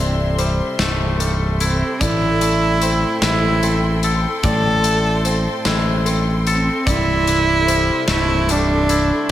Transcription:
0.00 0.60 C1 medium
0.00 1.61 C2 medium
0.00 2.01 C3 medium
0.00 0.38 G3 medium
0.00 0.42 A3 medium
0.00 0.80 C4 medium
0.00 1.60 E4 medium
0.00 1.20 A4 medium
0.00 6.83 A4 medium
0.00 0.38 D5 medium
0.00 1.97 E5 medium
0.00 1.97 C6 medium
0.38 1.20 G3 medium
0.38 2.00 C5 medium
0.38 closed hi-hat medium
0.79 1.82 C1 medium
0.79 2.42 A3 medium
0.79 snare medium
0.79 closed hi-hat medium
1.20 2.04 G3 medium
1.20 3.63 A4 medium
1.20 closed hi-hat medium
1.60 2.03 C4 medium
1.60 3.24 E4 medium
1.60 closed hi-hat medium
2.01 3.04 A1 medium
2.01 4.04 A2 medium
2.01 3.22 E4 loud
2.01 2.82 D5 medium
2.01 6.84 G5 medium
2.01 9.26 C6 medium
2.01 kick medium
2.01 closed hi-hat medium
2.41 4.85 A3 medium
2.41 closed hi-hat medium
2.82 3.63 C4 medium
2.82 4.44 C5 medium
2.82 closed hi-hat medium
3.22 4.25 A1 medium
3.22 4.00 E4 medium
3.22 5.66 E4 medium
3.22 snare loud
3.22 closed hi-hat medium
3.63 5.26 C4 medium
3.63 6.06 A4 medium
3.63 closed hi-hat medium
4.03 6.47 A4 medium
4.03 closed hi-hat medium
4.43 5.46 A1 medium
4.43 6.47 A2 medium
4.43 5.62 A4 loud
4.43 5.24 D5 medium
4.43 kick loud
4.43 closed hi-hat medium
4.84 7.27 A3 medium
4.84 closed hi-hat medium
5.25 6.06 C4 medium
5.25 6.86 C5 medium
5.25 closed hi-hat medium
5.65 6.68 A1 medium
5.65 8.09 E4 medium
5.65 snare loud
5.65 closed hi-hat medium
6.06 7.68 C4 medium
6.06 8.48 A4 medium
6.06 closed hi-hat medium
6.47 6.90 C4 medium
6.47 7.71 A4 medium
6.47 closed hi-hat medium
6.86 7.89 C1 medium
6.86 8.90 C2 medium
6.86 8.09 E4 loud
6.86 9.31 A4 medium
6.86 7.66 D5 medium
6.86 9.31 E5 medium
6.86 kick loud
6.86 closed hi-hat medium
7.27 9.30 C3 medium
7.27 closed hi-hat medium
7.67 8.50 G3 medium
7.67 9.29 C5 medium
7.67 closed hi-hat medium
8.08 9.11 C1 medium
8.08 9.31 A3 medium
8.08 8.52 E4 loud
8.08 snare medium
8.08 closed hi-hat medium
8.48 9.31 G3 medium
8.48 9.31 D4 loud
8.48 9.31 A4 medium
8.48 closed hi-hat medium
8.89 9.31 E4 medium
8.89 closed hi-hat medium

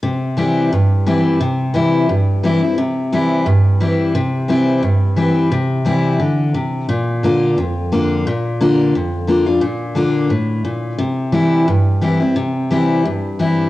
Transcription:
0.03 0.69 C3 loud
0.37 0.70 E3 medium
0.37 0.70 G3 medium
0.37 0.71 C4 medium
0.37 0.71 E4 loud
0.72 1.38 G2 medium
1.06 1.39 E3 medium
1.06 1.39 G3 medium
1.06 1.40 C4 medium
1.06 1.40 E4 medium
1.41 2.06 C3 loud
1.74 2.07 E3 medium
1.74 2.08 G3 medium
1.74 2.08 C4 medium
1.74 2.08 E4 medium
2.09 2.75 G2 medium
2.43 2.61 E3 medium
2.43 2.62 G3 medium
2.43 2.62 C4 medium
2.43 2.61 E4 medium
2.62 2.78 C4 medium
2.62 2.77 E4 medium
2.78 3.43 C3 loud
3.12 3.45 E3 medium
3.12 3.45 G3 medium
3.12 3.45 C4 medium
3.12 3.46 E4 loud
3.46 4.11 G2 medium
3.80 4.13 E3 medium
3.80 4.13 G3 medium
3.80 4.14 C4 medium
3.80 4.14 E4 medium
4.15 4.80 C3 loud
4.48 4.81 E3 medium
4.48 4.82 G3 medium
4.48 4.82 C4 medium
4.48 4.82 E4 medium
4.83 5.48 G2 medium
5.16 5.50 E3 medium
5.16 5.50 G3 medium
5.16 5.50 C4 medium
5.16 5.50 E4 medium
5.51 6.17 C3 medium
5.85 6.18 E3 medium
5.85 6.18 G3 medium
5.85 6.19 C4 loud
5.85 6.19 E4 loud
6.20 6.52 D3 medium
6.54 6.87 C3 medium
6.88 7.54 A#2 loud
7.23 7.56 D3 medium
7.23 7.56 A#3 medium
7.23 7.56 D4 medium
7.23 7.57 F4 medium
7.58 8.23 F2 medium
7.92 8.24 D3 medium
7.92 8.24 A#3 medium
7.92 8.25 D4 medium
7.92 8.25 F4 medium
8.27 8.91 A#2 loud
8.61 8.93 D3 medium
8.61 8.93 A#3 medium
8.61 8.93 D4 medium
8.61 8.93 F4 loud
8.95 9.60 F2 medium
9.27 9.46 D3 medium
9.27 9.46 A#3 medium
9.27 9.46 D4 medium
9.27 9.45 F4 loud
9.46 9.62 D4 soft
9.46 9.61 F4 medium
9.61 10.27 A#2 loud
9.95 10.29 D3 medium
9.95 10.29 A#3 medium
9.95 10.29 D4 medium
9.95 10.30 F4 medium
10.30 10.63 A2 medium
10.65 10.98 A#2 medium
10.99 11.65 C3 loud
11.32 11.66 E3 medium
11.32 11.66 G3 medium
11.32 11.67 C4 medium
11.32 11.67 E4 loud
11.68 12.34 G2 medium
12.02 12.20 E3 medium
12.02 12.20 G3 medium
12.02 12.21 C4 medium
12.02 12.19 E4 medium
12.20 12.37 C4 soft
12.20 12.35 E4 medium
12.36 13.02 C3 loud
12.71 13.04 E3 medium
12.71 13.04 G3 medium
12.71 13.04 C4 loud
12.71 13.05 E4 medium
13.05 13.69 G2 medium
13.39 13.69 E3 medium
13.39 13.69 G3 medium
13.39 13.69 C4 medium
13.39 13.69 E4 medium

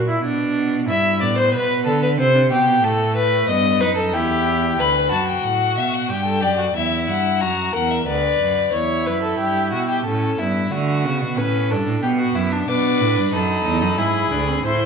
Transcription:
0.00 0.23 A#2 medium
0.08 0.23 E4 medium
0.24 0.90 B2 medium
0.24 0.88 D4 medium
0.88 1.23 G2 medium
0.88 1.23 E4 medium
0.88 1.19 E5 medium
1.21 1.55 A2 medium
1.21 2.18 B3 medium
1.21 1.38 D5 medium
1.38 1.53 C5 medium
1.54 1.88 B2 medium
1.54 1.86 B4 medium
1.86 2.19 D3 medium
1.86 2.02 A4 medium
2.03 2.09 B4 medium
2.18 2.52 C3 medium
2.18 2.34 C4 medium
2.18 2.51 C5 medium
2.35 2.41 D4 medium
2.50 2.82 B2 medium
2.50 2.57 C4 medium
2.50 2.85 G4 medium
2.67 2.83 B3 medium
2.83 3.47 A2 medium
2.83 3.50 A3 medium
2.83 3.16 A4 loud
3.16 3.48 B4 loud
3.48 3.82 G2 medium
3.48 3.82 B3 medium
3.48 3.82 D#5 medium
3.80 4.15 F#2 medium
3.80 4.15 D#4 medium
3.80 3.96 B4 medium
3.96 4.15 A4 medium
4.13 4.78 E2 medium
4.13 4.79 E4 medium
4.13 4.81 G4 medium
4.78 5.13 D2 medium
4.78 5.12 B4 medium
4.78 5.09 B5 loud
5.11 5.44 F#2 medium
5.11 6.11 F#4 medium
5.11 5.27 A5 medium
5.27 5.45 G5 medium
5.44 5.79 A2 medium
5.44 5.77 F#5 medium
5.77 6.11 B2 medium
5.77 5.95 E5 medium
5.94 6.09 F#5 medium
6.09 6.44 G2 medium
6.09 6.25 G4 medium
6.09 6.44 G5 medium
6.26 6.42 A4 medium
6.41 6.75 F#2 medium
6.41 6.57 G4 medium
6.41 6.75 D5 medium
6.57 6.64 F#4 medium
6.74 7.09 E2 medium
6.74 7.43 E4 medium
6.74 7.08 E5 medium
7.08 7.43 G2 medium
7.08 7.43 F#5 medium
7.41 7.74 F#2 medium
7.41 7.74 F#4 medium
7.41 7.74 A#5 medium
7.73 8.07 E2 medium
7.73 8.06 A#4 medium
7.73 7.92 F#5 medium
7.91 8.07 E5 medium
8.06 8.40 D2 medium
8.06 8.72 B4 medium
8.06 8.72 D5 medium
8.40 8.73 F#2 medium
8.73 9.09 E2 medium
8.73 10.02 E4 medium
8.73 9.08 C#5 medium
9.06 9.39 F#2 medium
9.06 9.22 B4 medium
9.23 9.38 A4 medium
9.39 9.74 G2 medium
9.39 9.71 G4 medium
9.72 10.05 B2 medium
9.72 9.88 F#4 medium
9.89 10.04 G4 medium
10.05 10.38 A2 medium
10.05 10.38 C#4 medium
10.05 10.40 A4 medium
10.38 10.71 G2 medium
10.38 10.72 B3 medium
10.38 10.73 E4 medium
10.72 11.06 D3 medium
10.72 11.06 A3 medium
10.72 11.39 F#4 medium
11.05 11.23 C#3 medium
11.05 11.39 B3 medium
11.22 11.39 B2 medium
11.37 11.72 A2 medium
11.37 11.73 C#4 medium
11.37 11.72 B4 medium
11.70 11.86 G2 medium
11.70 12.05 D4 medium
11.70 12.02 A4 medium
11.87 12.02 A2 medium
12.02 12.35 B2 medium
12.02 12.68 B3 medium
12.02 12.09 G4 medium
12.19 12.37 F#4 medium
12.35 12.67 F#2 medium
12.35 12.54 E4 medium
12.52 12.70 D4 medium
12.68 13.02 B2 medium
12.68 13.34 D4 medium
12.68 13.33 B4 medium
12.68 13.29 D6 medium
13.01 13.18 A2 medium
13.17 13.32 G2 medium
13.32 13.65 F#2 medium
13.32 13.99 D#4 medium
13.32 14.00 A4 medium
13.32 14.63 B5 medium
13.66 13.83 E2 medium
13.82 14.00 F#2 medium
13.98 14.31 G#2 medium
13.98 14.32 E4 medium
13.98 14.65 G#4 medium
14.31 14.65 D2 medium
14.31 14.50 D4 medium
14.48 14.64 C4 medium
14.65 14.86 A2 medium
14.65 14.86 E4 medium
14.65 14.86 C5 medium
14.65 14.86 C6 medium

